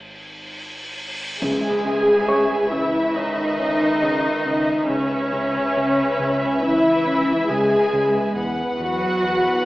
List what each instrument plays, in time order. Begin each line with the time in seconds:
Already playing: synth drone G#1, cymbal swell
1.41 double bass section C#2, synth drone C#2, analog synth bass C#3, timpani C#3, cello section G#3, french horn section G#4, viola section G#4, violin section B4 E5 G#5, impact
1.85 analog synth bass C#3
2.28 analog synth bass C#3, grand piano C#5 C#6
2.71 analog synth bass C#3, cello section E3, viola section E4, french horn section E4, violin section E5
3.15 cello section D#3, french horn section D#3, analog synth bass C#4, viola section D#4, violin section D#5
3.59 analog synth bass C#4
4.02 analog synth bass C#3
4.46 analog synth bass C#3
4.88 double bass section C#2, synth drone C#2, cello section C#3, analog synth bass C#3, viola section C#4, french horn section C#4, violin section B4 C#5 E5
5.33 analog synth bass C#3
5.77 analog synth bass C#3
6.19 analog synth bass C#3
6.63 cello section E3, analog synth bass C#4, viola section E4, french horn section E4, violin section E5
7.07 analog synth bass C#4
7.49 analog synth bass C#3, cello section G#3, french horn section G#4, viola section G#4, violin section G#5
7.93 analog synth bass C#3
8.36 analog synth bass E2, double bass section E2, synth drone E2, violin section B4 F#5
8.80 analog synth bass E2, cello section F#3, viola section F#4, french horn section F#4, violin section F#5
9.23 analog synth bass E2